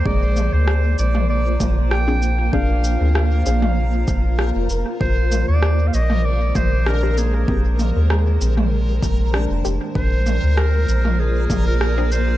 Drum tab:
SH |--x---x---x---x-|--x---x---x---x-|--x---x---x---x-|--x---x---x---x-|
SD |----r-------r---|----r-------r---|----r-------r---|----r-------r---|
T2 |--o----o--o-----|-------o--------|--o----o--o-----|--o----o--------|
BD |o---------o-----|o---------o-----|o---------o-----|o---------o-----|

SH |--x---x---x---x-|
SD |----r-------r---|
T2 |--o----o--o-----|
BD |o---------o-----|